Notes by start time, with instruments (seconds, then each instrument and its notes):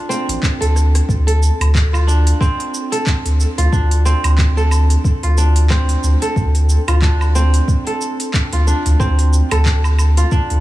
Already playing: kora D4 F4 A4
0.09 kora C4, shaker
0.28 analog synth bass A1, open hi-hat, shaker
0.43 kick, clap, shaker
0.61 analog synth bass D2, kora A4, open hi-hat, shaker
0.76 cross-stick, shaker
0.95 cross-stick, open hi-hat, shaker
1.09 analog synth bass D2, kick, shaker
1.27 kora A4, open hi-hat, shaker
1.43 shaker
1.60 analog synth bass D2, open hi-hat, low woodblock, shaker
1.75 kick, clap, shaker
1.93 kora F4, low woodblock, shaker
2.07 kora D4, shaker
2.27 open hi-hat, shaker
2.41 kora C4, kick, shaker
2.60 open hi-hat
2.74 shaker
2.92 kora A4, open hi-hat, shaker
3.07 kick, clap, shaker
3.25 analog synth bass D2, open hi-hat, shaker
3.40 shaker
3.58 analog synth bass D2, kora F4, open hi-hat, shaker
3.72 analog synth bass D2, kora D4, kick, shaker
3.91 open hi-hat, shaker
4.05 kora C4, shaker
4.24 analog synth bass D2, open hi-hat, low woodblock, shaker
4.38 kick, clap, shaker
4.57 kora A4, shaker
4.71 low woodblock, shaker
4.90 open hi-hat, shaker
5.04 kick, shaker
5.23 analog synth bass D2, kora F4, open hi-hat
5.38 kora D4, shaker
5.56 open hi-hat, shaker
5.70 kora C4, kick, clap, shaker
5.89 open hi-hat, shaker
6.03 analog synth bass D2, shaker
6.22 kora A4, open hi-hat, shaker
6.36 analog synth bass D2, kick, shaker
6.55 open hi-hat, shaker
6.70 shaker
6.88 analog synth bass D2, kora F4, open hi-hat, low woodblock, shaker
7.02 kora D4, kick, clap, shaker
7.21 low woodblock, shaker
7.35 kora C4, shaker
7.54 open hi-hat, shaker
7.68 kick, shaker
7.87 kora A4, open hi-hat
8.01 shaker
8.20 open hi-hat, shaker
8.34 kick, clap, shaker
8.52 analog synth bass D2, kora F4, open hi-hat, shaker
8.67 kora D4, shaker
8.86 analog synth bass D2, open hi-hat, shaker
9.00 analog synth bass D2, kora C4, kick, shaker
9.19 open hi-hat, shaker
9.33 shaker
9.51 analog synth bass D2, kora A4, open hi-hat, low woodblock, shaker
9.66 kick, clap, shaker
9.84 low woodblock, shaker
9.99 low woodblock, shaker
10.17 kora F4, open hi-hat, shaker
10.32 kora D4, kick, shaker
10.50 analog synth bass D2, open hi-hat